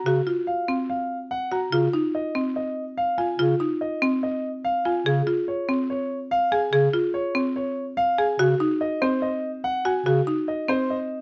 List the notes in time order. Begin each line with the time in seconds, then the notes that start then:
Already playing: A#5
0.06 C#3 F#4
0.27 F4
0.47 F5
0.68 C4
0.90 F5
1.31 F#5
1.52 F#4 A#5
1.72 C#3 F4
1.94 D#4
2.15 D#5
2.35 C4
2.56 D#5
2.97 F5
3.18 F4 G#5
3.39 C#3 F4
3.60 D#4
3.81 D#5
4.02 C4
4.23 D#5
4.64 F5
4.85 F4 G#5
5.06 C#3 G#4
5.27 F4
5.48 C#5
5.69 C4
5.90 C#5
6.31 F5
6.52 G#4 G#5
6.73 C#3 G#4
6.93 F4
7.14 C#5
7.35 C4
7.56 C#5
7.97 F5
8.18 G#4 G#5
8.39 C#3 F#4
8.60 D#4
8.81 D#5
9.02 C4 C5
9.22 D#5
9.64 F#5
9.85 F#4 G#5
10.06 C#3 F#4
10.27 D#4
10.48 D#5
10.68 C4 C5
10.90 D#5